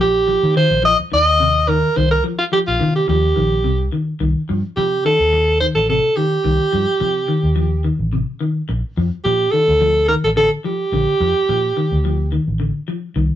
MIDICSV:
0, 0, Header, 1, 6, 480
1, 0, Start_track
1, 0, Tempo, 560224
1, 1681, Time_signature, 4, 2, 24, 8
1, 11442, End_track
2, 0, Start_track
2, 0, Title_t, "Alto saxophone"
2, 0, Program_c, 0, 65
2, 6, Note_on_c, 0, 67, 97
2, 450, Note_off_c, 0, 67, 0
2, 488, Note_on_c, 0, 72, 108
2, 708, Note_off_c, 0, 72, 0
2, 728, Note_on_c, 0, 75, 118
2, 834, Note_off_c, 0, 75, 0
2, 976, Note_on_c, 0, 75, 115
2, 1444, Note_on_c, 0, 70, 98
2, 1457, Note_off_c, 0, 75, 0
2, 1685, Note_on_c, 0, 72, 102
2, 1698, Note_off_c, 0, 70, 0
2, 1803, Note_off_c, 0, 72, 0
2, 1808, Note_on_c, 0, 70, 91
2, 1916, Note_off_c, 0, 70, 0
2, 2043, Note_on_c, 0, 65, 84
2, 2095, Note_off_c, 0, 65, 0
2, 2166, Note_on_c, 0, 67, 89
2, 2221, Note_off_c, 0, 67, 0
2, 2291, Note_on_c, 0, 65, 89
2, 2512, Note_off_c, 0, 65, 0
2, 2532, Note_on_c, 0, 67, 83
2, 2636, Note_off_c, 0, 67, 0
2, 2647, Note_on_c, 0, 67, 80
2, 3329, Note_off_c, 0, 67, 0
2, 4084, Note_on_c, 0, 67, 81
2, 4305, Note_off_c, 0, 67, 0
2, 4333, Note_on_c, 0, 69, 103
2, 4774, Note_off_c, 0, 69, 0
2, 4803, Note_on_c, 0, 72, 95
2, 4859, Note_off_c, 0, 72, 0
2, 4929, Note_on_c, 0, 69, 88
2, 5034, Note_off_c, 0, 69, 0
2, 5052, Note_on_c, 0, 69, 96
2, 5281, Note_on_c, 0, 67, 90
2, 5294, Note_off_c, 0, 69, 0
2, 6720, Note_off_c, 0, 67, 0
2, 7918, Note_on_c, 0, 67, 91
2, 8152, Note_on_c, 0, 69, 107
2, 8165, Note_off_c, 0, 67, 0
2, 8635, Note_off_c, 0, 69, 0
2, 8639, Note_on_c, 0, 70, 99
2, 8695, Note_off_c, 0, 70, 0
2, 8774, Note_on_c, 0, 69, 80
2, 8823, Note_off_c, 0, 69, 0
2, 8886, Note_on_c, 0, 69, 101
2, 8992, Note_off_c, 0, 69, 0
2, 9125, Note_on_c, 0, 67, 96
2, 10526, Note_off_c, 0, 67, 0
2, 11442, End_track
3, 0, Start_track
3, 0, Title_t, "Clean electric guitar"
3, 0, Program_c, 1, 27
3, 0, Note_on_c, 1, 53, 81
3, 168, Note_off_c, 1, 53, 0
3, 237, Note_on_c, 1, 53, 76
3, 410, Note_off_c, 1, 53, 0
3, 478, Note_on_c, 1, 51, 91
3, 650, Note_off_c, 1, 51, 0
3, 713, Note_on_c, 1, 53, 88
3, 888, Note_off_c, 1, 53, 0
3, 957, Note_on_c, 1, 51, 75
3, 1130, Note_off_c, 1, 51, 0
3, 1198, Note_on_c, 1, 48, 83
3, 1371, Note_off_c, 1, 48, 0
3, 1441, Note_on_c, 1, 51, 89
3, 1612, Note_off_c, 1, 51, 0
3, 1682, Note_on_c, 1, 51, 94
3, 1853, Note_off_c, 1, 51, 0
3, 1918, Note_on_c, 1, 53, 80
3, 2090, Note_off_c, 1, 53, 0
3, 2158, Note_on_c, 1, 53, 80
3, 2330, Note_off_c, 1, 53, 0
3, 2399, Note_on_c, 1, 51, 89
3, 2571, Note_off_c, 1, 51, 0
3, 2638, Note_on_c, 1, 53, 89
3, 2810, Note_off_c, 1, 53, 0
3, 2880, Note_on_c, 1, 51, 74
3, 3052, Note_off_c, 1, 51, 0
3, 3121, Note_on_c, 1, 48, 73
3, 3292, Note_off_c, 1, 48, 0
3, 3362, Note_on_c, 1, 51, 74
3, 3533, Note_off_c, 1, 51, 0
3, 3601, Note_on_c, 1, 51, 83
3, 3773, Note_off_c, 1, 51, 0
3, 3848, Note_on_c, 1, 53, 71
3, 4017, Note_off_c, 1, 53, 0
3, 4089, Note_on_c, 1, 53, 78
3, 4258, Note_off_c, 1, 53, 0
3, 4325, Note_on_c, 1, 51, 78
3, 4495, Note_off_c, 1, 51, 0
3, 4806, Note_on_c, 1, 51, 68
3, 4975, Note_off_c, 1, 51, 0
3, 5048, Note_on_c, 1, 48, 75
3, 5217, Note_off_c, 1, 48, 0
3, 5285, Note_on_c, 1, 51, 76
3, 5455, Note_off_c, 1, 51, 0
3, 5522, Note_on_c, 1, 51, 83
3, 5692, Note_off_c, 1, 51, 0
3, 5762, Note_on_c, 1, 53, 75
3, 5933, Note_off_c, 1, 53, 0
3, 6000, Note_on_c, 1, 53, 72
3, 6172, Note_off_c, 1, 53, 0
3, 6240, Note_on_c, 1, 51, 77
3, 6411, Note_off_c, 1, 51, 0
3, 6475, Note_on_c, 1, 53, 83
3, 6648, Note_off_c, 1, 53, 0
3, 6721, Note_on_c, 1, 51, 72
3, 6892, Note_off_c, 1, 51, 0
3, 6963, Note_on_c, 1, 48, 75
3, 7133, Note_off_c, 1, 48, 0
3, 7201, Note_on_c, 1, 51, 79
3, 7372, Note_off_c, 1, 51, 0
3, 7690, Note_on_c, 1, 53, 69
3, 7857, Note_off_c, 1, 53, 0
3, 7929, Note_on_c, 1, 53, 77
3, 8097, Note_off_c, 1, 53, 0
3, 8166, Note_on_c, 1, 51, 74
3, 8335, Note_off_c, 1, 51, 0
3, 8404, Note_on_c, 1, 53, 89
3, 8573, Note_off_c, 1, 53, 0
3, 8640, Note_on_c, 1, 51, 74
3, 8811, Note_off_c, 1, 51, 0
3, 8877, Note_on_c, 1, 50, 74
3, 9049, Note_off_c, 1, 50, 0
3, 9120, Note_on_c, 1, 53, 86
3, 9291, Note_off_c, 1, 53, 0
3, 9365, Note_on_c, 1, 50, 83
3, 9534, Note_off_c, 1, 50, 0
3, 9605, Note_on_c, 1, 53, 76
3, 9774, Note_off_c, 1, 53, 0
3, 9847, Note_on_c, 1, 53, 80
3, 10015, Note_off_c, 1, 53, 0
3, 10083, Note_on_c, 1, 51, 78
3, 10252, Note_off_c, 1, 51, 0
3, 10323, Note_on_c, 1, 53, 79
3, 10492, Note_off_c, 1, 53, 0
3, 10556, Note_on_c, 1, 51, 73
3, 10727, Note_off_c, 1, 51, 0
3, 10793, Note_on_c, 1, 50, 72
3, 10965, Note_off_c, 1, 50, 0
3, 11035, Note_on_c, 1, 53, 75
3, 11207, Note_off_c, 1, 53, 0
3, 11273, Note_on_c, 1, 51, 84
3, 11442, Note_off_c, 1, 51, 0
3, 11442, End_track
4, 0, Start_track
4, 0, Title_t, "Fingered electric bass"
4, 0, Program_c, 2, 33
4, 1, Note_on_c, 2, 34, 89
4, 297, Note_off_c, 2, 34, 0
4, 370, Note_on_c, 2, 51, 83
4, 563, Note_off_c, 2, 51, 0
4, 603, Note_on_c, 2, 34, 86
4, 799, Note_off_c, 2, 34, 0
4, 967, Note_on_c, 2, 39, 104
4, 1548, Note_off_c, 2, 39, 0
4, 1688, Note_on_c, 2, 36, 96
4, 1879, Note_off_c, 2, 36, 0
4, 2295, Note_on_c, 2, 34, 81
4, 2384, Note_off_c, 2, 34, 0
4, 2408, Note_on_c, 2, 48, 87
4, 2600, Note_off_c, 2, 48, 0
4, 2642, Note_on_c, 2, 39, 87
4, 2836, Note_off_c, 2, 39, 0
4, 2888, Note_on_c, 2, 34, 93
4, 3127, Note_off_c, 2, 34, 0
4, 3127, Note_on_c, 2, 36, 96
4, 3319, Note_off_c, 2, 36, 0
4, 3604, Note_on_c, 2, 36, 85
4, 3704, Note_off_c, 2, 36, 0
4, 3854, Note_on_c, 2, 43, 96
4, 3951, Note_off_c, 2, 43, 0
4, 4087, Note_on_c, 2, 48, 86
4, 4279, Note_off_c, 2, 48, 0
4, 4451, Note_on_c, 2, 39, 81
4, 4838, Note_off_c, 2, 39, 0
4, 4930, Note_on_c, 2, 33, 81
4, 5123, Note_off_c, 2, 33, 0
4, 5526, Note_on_c, 2, 36, 98
4, 5625, Note_off_c, 2, 36, 0
4, 5771, Note_on_c, 2, 43, 90
4, 5868, Note_off_c, 2, 43, 0
4, 6007, Note_on_c, 2, 48, 92
4, 6199, Note_off_c, 2, 48, 0
4, 6369, Note_on_c, 2, 39, 75
4, 6757, Note_off_c, 2, 39, 0
4, 6847, Note_on_c, 2, 33, 80
4, 7041, Note_off_c, 2, 33, 0
4, 7446, Note_on_c, 2, 34, 103
4, 7545, Note_off_c, 2, 34, 0
4, 7687, Note_on_c, 2, 41, 102
4, 7786, Note_off_c, 2, 41, 0
4, 7927, Note_on_c, 2, 46, 102
4, 8118, Note_off_c, 2, 46, 0
4, 8293, Note_on_c, 2, 38, 77
4, 8678, Note_off_c, 2, 38, 0
4, 8773, Note_on_c, 2, 33, 83
4, 8963, Note_off_c, 2, 33, 0
4, 9357, Note_on_c, 2, 34, 87
4, 9459, Note_off_c, 2, 34, 0
4, 9598, Note_on_c, 2, 41, 100
4, 9699, Note_off_c, 2, 41, 0
4, 9845, Note_on_c, 2, 46, 89
4, 10036, Note_off_c, 2, 46, 0
4, 10210, Note_on_c, 2, 38, 83
4, 10596, Note_off_c, 2, 38, 0
4, 10690, Note_on_c, 2, 33, 76
4, 10881, Note_off_c, 2, 33, 0
4, 11273, Note_on_c, 2, 36, 94
4, 11376, Note_off_c, 2, 36, 0
4, 11442, End_track
5, 0, Start_track
5, 0, Title_t, "Muted clean electric guitar strokes"
5, 4567, Note_on_c, 9, 29, 90
5, 4653, Note_off_c, 9, 29, 0
5, 7443, Note_on_c, 9, 29, 92
5, 7529, Note_off_c, 9, 29, 0
5, 11442, End_track
6, 0, Start_track
6, 0, Title_t, "Muted fingered electric bass strokes"
6, 853, Note_on_c, 9, 29, 42
6, 938, Note_off_c, 9, 29, 0
6, 11442, End_track
0, 0, End_of_file